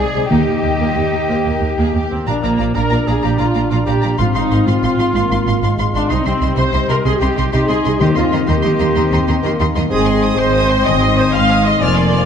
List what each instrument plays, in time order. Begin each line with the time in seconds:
Already playing: harp C3 D#4 A#4, french horn section G#3 D#4, violin section G#4, cello section G#4
0.00 harp C5, clarinet D5
0.14 double bass section C2, viola section G#3, violin section C4
0.29 double bass section D#2, harp D#3, timpani D#3, french horn section G3, viola section A#3, violin section D#4 G4, cello section G4, clarinet D#5
0.47 double bass section D#2, violin section G3, viola section A#3
0.63 double bass section D#2, violin section A#3, viola section A#3, harp A#4
0.79 double bass section D#2, viola section A#3, violin section F4, harp D#5
0.95 double bass section D#2, viola section A#3, violin section D#4, harp A#4
1.12 double bass section D#2, viola section A#3, harp G4
1.28 double bass section D#2, harp A#3, viola section A#3, violin section C5
1.44 double bass section D#2, viola section A#3, harp D#4, violin section A#4
1.60 double bass section D#2, viola section A#3, harp A#4
1.77 double bass section D#2, viola section A#3, violin section G#4, harp D#5
1.94 double bass section D#2, viola section A#3, violin section G4, harp A#4
2.11 double bass section D#2, viola section A#3 C4, cor anglais C4, harp G4
2.27 double bass section A#1, harp A#2, cello section A#2, french horn section F3, cor anglais D4, viola section D4, violin section D5 F5 A#5, clarinet D5, flute A#5
2.43 double bass section A#1, cello section A#2, cor anglais A#3, viola section A#3, harp D4, violin section D5 F5 A#5
2.58 double bass section A#1, cello section A#2, harp F4, violin section D5 F5 A#5
2.75 double bass section A#1, cello section A#2, french horn section D4, harp A#4, viola section A#4, cor anglais A#4, clarinet D5, violin section D5 F5 A#5, flute A#5
2.90 double bass section A#1, cello section A#2, harp F4, violin section D5 F5 A#5
3.07 double bass section A#1, cello section A#2, harp D4, cor anglais G#4, viola section G#4, violin section D5 F5 A#5
3.23 double bass section A#1, cello section A#2, harp F3, viola section G4, cor anglais G4, violin section D5 F5 A#5
3.39 double bass section A#1, cello section A#2, harp D4, viola section F4, cor anglais F4, violin section D5 F5 A#5
3.54 double bass section A#1, cello section A#2, harp F4, violin section D5 F5 A#5
3.70 double bass section A#1, cello section A#2, cor anglais F4, viola section F4, harp A#4, violin section D5 F5 A#5, clarinet D5, flute A#5
3.86 double bass section A#1, cello section A#2, harp F4, cor anglais G4, viola section G4, violin section D5 F5 A#5
4.02 double bass section A#1, cello section A#2, violin section D5 F5 A#5
4.18 double bass section G#1, cello section G#2, harp G#2, french horn section C4, cor anglais F4, viola section F4, violin section F5 C6, clarinet F5, flute C6
4.35 double bass section G#1, cello section G#2, harp C4, cor anglais D#4, viola section D#4, violin section F5 C6
4.51 double bass section G#1, cello section G#2, harp F4, violin section F5 C6
4.66 double bass section G#1, cello section G#2, viola section F4, cor anglais F4, harp C5, clarinet F5, violin section F5 C6, flute C6
4.82 double bass section G#1, cello section G#2, harp F4, violin section F5 C6
4.98 double bass section G#1, cello section G#2, harp C4, violin section F5 C6
5.14 double bass section G#1, cello section G#2, harp G#2, french horn section A#3, violin section F5 C6
5.30 double bass section G#1, cello section G#2, harp G#3, violin section F5 C6
5.46 double bass section G#1, cello section G#2, harp F4, violin section F5 C6
5.62 double bass section G#1, cello section G#2, french horn section G#3, harp C5, violin section F5 C6
5.78 double bass section G#1, cello section G#2, harp F4, violin section F5 C6
5.94 double bass section G#1, cello section G#2, harp C4, cor anglais D4, viola section D4, violin section F5 C6
6.09 double bass section C2, harp C3, cello section C3, french horn section G3, cor anglais D#4, viola section D#4, violin section D#5 C6, clarinet D#5, flute C6
6.24 double bass section C2, cello section C3, viola section C4, harp C4, cor anglais C4, violin section D#5 C6
6.41 double bass section C2, cello section C3, harp D#4, violin section D#5 C6
6.56 double bass section C2, cello section C3, viola section C5, harp C5, cor anglais C5, violin section D#5 C6, clarinet D#5, flute C6
6.73 double bass section C2, cello section C3, harp D#4, violin section D#5 C6
6.89 double bass section C2, cello section C3, viola section A#4, cor anglais A#4, violin section D#5 C6
7.04 double bass section C2, cello section C3, viola section G#4, cor anglais G#4, violin section D#5 C6
7.19 double bass section C2, cello section C3, harp C4, viola section G4, cor anglais G4, violin section D#5 C6
7.37 double bass section C2, cello section C3, harp D#4, violin section D#5 C6
7.51 double bass section C2, cello section C3, french horn section D#4, viola section G4, cor anglais G4, harp C5, violin section D#5 C6, clarinet D#5, flute C6
7.68 double bass section C2, cello section C3, viola section G#4, cor anglais G#4, violin section D#5 C6
7.85 double bass section C2, cello section C3, harp C4, violin section D#5 C6
7.99 double bass section D#2, harp D#3, timpani D#3, cello section D#3, french horn section C4, viola section G4, cor anglais G4, clarinet D#5, violin section D#5 A#5 C6, flute C6
8.15 double bass section D#2, cello section D#3, harp C4, viola section F4, cor anglais F4, violin section D#5 A#5 C6
8.32 double bass section D#2, cello section D#3, harp D#4, violin section D#5 A#5 C6
8.47 double bass section D#2, cello section D#3, french horn section A#3, viola section G4, cor anglais G4, harp A#4, clarinet D#5, violin section D#5 A#5 C6, flute C6
8.63 double bass section D#2, cello section D#3, harp D#4, violin section D#5 A#5 C6
8.79 double bass section D#2, cello section D#3, harp C4, violin section D#5 A#5 C6
8.94 double bass section D#2, cello section D#3, harp A#3, french horn section C4, violin section D#5 A#5 C6
9.12 double bass section D#2, cello section D#3, harp C4, violin section D#5 A#5 C6
9.27 double bass section D#2, cello section D#3, harp D#4, violin section D#5 A#5 C6
9.43 double bass section D#2, cello section D#3, french horn section A#3, harp A#4, violin section D#5 A#5 C6
9.60 double bass section D#2, cello section D#3, harp D#4, violin section D#5 A#5 C6
9.76 double bass section D#2, cello section D#3, harp C4, violin section D#5 A#5 C6
9.90 double bass section G#1, harp G#2, cello section G#2, french horn section C4, viola section G#4, cor anglais G#4, violin section C5 G#5 D#6, clarinet D#5, flute C6
10.07 harp C4, violin section D#5 C6
10.23 violin section C5 G#5 D#6
10.38 double bass section G#1, cello section G#2, harp G#4, viola section C5, cor anglais C5, violin section D#5 C6, clarinet D#5, flute C6
10.55 harp D#4, violin section C5 G#5 D#6
10.70 harp C4, violin section D#5 C6
10.84 double bass section G#1, cello section G#2, harp D#3, violin section C5 G#5 D#6, cor anglais D#5, viola section D#5, clarinet D#5, flute C6
11.02 harp C4, violin section D#5 C6
11.17 harp D#4, cor anglais C5, violin section C5 G#5 D#6, viola section C5
11.33 double bass section G#1, cello section G#2, harp G#4, violin section D#5 C6, cor anglais F5, viola section F5
11.49 violin section C5 G#5 D#6
11.65 harp C4, cor anglais D#5, viola section D#5, violin section D#5 C6
11.80 double bass section F1, cello section F2, harp F3, french horn section A#3, violin section C5 G#5 F6, cor anglais D5, viola section D5, clarinet G#5, flute C6
11.97 harp F4, violin section F5 C6
12.13 harp G#4, violin section C5 G#5 F6